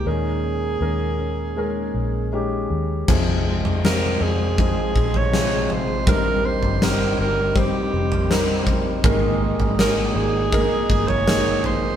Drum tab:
CC |----------------|x---------------|----------------|----------------|
SD |----------------|----o-------o---|----o-------o---|----o-------o---|
FT |----------------|o--o----o--o--o-|o--o-------o--o-|o--o-------o--o-|
BD |----------------|o-------o-o-----|o-------o-----o-|o-------o-o-----|